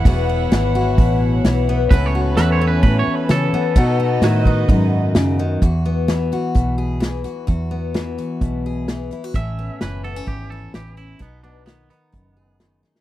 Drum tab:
HH |o---o---o---o---|o---o---o---o---|o---o---o---o---|x---x-x-x---x-x-|
SD |----o-------o---|----o-------o---|----o-------o---|----o-------o---|
BD |o-------o-------|o-------o-------|o-----o-o-------|o-------o-------|

HH |x---x-x-x---x-x-|x---x-x-x---x-x-|x---x-x-x---x---|
SD |----o-------o---|----o-------o---|----o-------o-oo|
BD |o-------o-------|o-------o-------|o-------o-------|